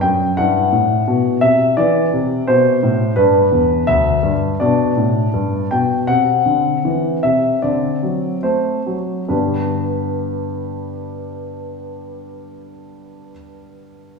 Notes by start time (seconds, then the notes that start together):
Already playing: D4
0.01 F#2 G5
0.37 G2 E4 F#5
0.72 A2
1.08 B2
1.41 C3 E5
1.77 E3 D5
2.13 C3
2.47 B2 C5
2.83 A2
3.16 G2 D4 B4
3.52 E2
3.87 D2 E5
4.23 G2
4.60 B2 D4 D5
4.97 A2
5.34 G2
5.71 B2 G5
6.07 C3 C4 F#5
6.46 D3
6.85 E3
7.23 C3 E5
7.62 D3 C4 D5
8.03 F#3
8.43 A3 C5
8.87 F#3
9.28 G2 D3 B3 D4 G4 B4